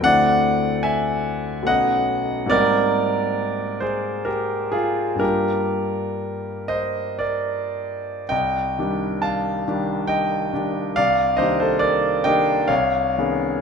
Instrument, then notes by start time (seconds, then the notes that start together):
grand piano
0.00 D2 A3 C4 D4 F#5
0.05 E4 D5
0.83 E5 G#5
1.63 B1 A3 B3 F#5
1.67 C#4 D#4 D#5
2.46 G#2 G3 A#3 C4 D5
2.51 D#4 A#4
3.80 G#4 C5
4.25 G4 A#4
4.72 F4 G#4
5.15 G2 G3 A#3 D4
5.20 F4 G4 A#4
6.68 C5 D#5
7.19 A#4 D5
8.29 C2 D#5 G5
8.79 D#3 G3 D4 G4
9.22 F5 A5
9.68 D#3 G3 D4 G4
10.07 D#5 G5
10.53 D#3 G3 D4 G4
10.96 C2 D5 F5
11.37 D#3 A#3 D4 G4 C5 D#5
11.60 A4 C5
11.79 A#4 D5
12.24 D#3 A#3 D4 G4 D#5 G5
12.68 C2 C#5 F5
13.18 D#3 B3 C#4 G#4